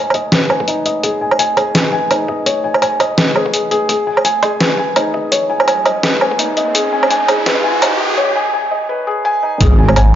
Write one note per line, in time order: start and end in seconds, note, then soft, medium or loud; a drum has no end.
0.00 0.68 D#4 medium
0.00 1.04 G#4 medium
0.00 0.32 B4 medium
0.00 2.46 C#5 loud
0.00 0.14 D#5 medium
0.00 0.50 G#5 loud
0.10 0.25 D#5 medium
0.10 kick medium
0.10 closed hi-hat soft
0.10 low woodblock medium
0.32 0.48 B4 medium
0.32 snare loud
0.32 closed hi-hat medium
0.50 0.67 G#5 medium
0.50 low woodblock soft
0.60 kick loud
0.68 0.84 D#4 medium
0.68 closed hi-hat medium
0.86 0.97 D#5 medium
0.86 closed hi-hat soft
1.03 1.21 G#4 medium
1.03 kick loud
1.03 closed hi-hat medium
1.21 1.38 G#5 medium
1.31 low woodblock medium
1.39 1.55 G#5 loud
1.39 closed hi-hat medium
1.57 1.73 G#4 medium
1.57 kick loud
1.57 closed hi-hat soft
1.57 low woodblock medium
1.75 1.91 B4 medium
1.75 snare loud
1.75 closed hi-hat medium
1.93 2.10 G#5 medium
2.11 2.27 D#4 medium
2.11 closed hi-hat medium
2.11 low woodblock medium
2.28 2.40 D#5 medium
2.28 kick medium
2.46 2.63 C#5 loud
2.46 kick loud
2.46 closed hi-hat medium
2.64 2.80 G#5 medium
2.74 low woodblock medium
2.82 2.99 G#5 medium
2.82 closed hi-hat medium
2.82 low woodblock medium
3.00 3.11 D#5 medium
3.00 kick medium
3.00 closed hi-hat soft
3.00 low woodblock medium
3.17 3.34 B4 medium
3.17 snare loud
3.17 closed hi-hat medium
3.35 3.52 G#4 medium
3.35 low woodblock soft
3.46 kick loud
3.53 3.70 G#4 medium
3.53 closed hi-hat medium
3.71 3.87 G#4 loud
3.71 closed hi-hat soft
3.89 4.06 G#4 medium
3.89 kick loud
3.89 closed hi-hat medium
3.89 riser medium
4.07 4.23 G#5 medium
4.17 low woodblock medium
4.25 4.41 G#5 loud
4.25 closed hi-hat medium
4.43 4.59 G#4 medium
4.43 kick loud
4.43 closed hi-hat soft
4.43 low woodblock medium
4.60 4.77 B4 medium
4.60 snare loud
4.60 closed hi-hat medium
4.78 4.96 G#5 medium
4.96 5.13 D#4 medium
4.96 closed hi-hat medium
4.96 low woodblock medium
5.14 5.25 D#5 medium
5.14 kick medium
5.32 5.48 C#5 loud
5.32 kick loud
5.32 closed hi-hat medium
5.50 5.66 G#5 medium
5.60 low woodblock medium
5.67 5.85 G#5 medium
5.67 closed hi-hat medium
5.67 low woodblock medium
5.85 5.97 D#5 medium
5.85 kick medium
5.85 closed hi-hat soft
5.85 low woodblock medium
6.03 6.20 B4 medium
6.03 snare loud
6.03 closed hi-hat medium
6.21 6.38 G#5 medium
6.21 low woodblock medium
6.31 kick loud
6.39 6.55 D#4 medium
6.39 closed hi-hat medium
6.57 6.68 D#5 medium
6.57 closed hi-hat soft
6.75 6.92 G#4 medium
6.75 kick loud
6.75 closed hi-hat medium
6.93 7.09 G#5 medium
7.03 low woodblock medium
7.10 7.27 G#5 loud
7.10 closed hi-hat medium
7.28 7.45 G#4 medium
7.28 kick loud
7.28 closed hi-hat soft
7.28 low woodblock medium
7.46 7.63 B4 medium
7.46 snare loud
7.46 closed hi-hat medium
7.64 7.81 G#5 medium
7.82 7.98 D#4 medium
7.82 closed hi-hat medium
7.82 low woodblock medium
8.00 8.11 D#5 medium
8.00 kick medium
8.18 8.34 C#5 loud
8.36 8.52 G#5 medium
8.53 8.71 G#5 medium
8.71 8.83 D#5 medium
8.89 9.06 B4 medium
9.07 9.18 G#4 loud
9.25 9.41 G#5 loud
9.43 9.59 D#4 medium
9.61 10.15 G#1 medium
9.61 9.78 G#4 medium
9.61 kick loud
9.61 closed hi-hat medium
9.61 impact medium
9.79 9.95 G#5 medium
9.89 low woodblock medium
9.96 10.13 G#5 loud
9.96 closed hi-hat medium
9.96 low woodblock medium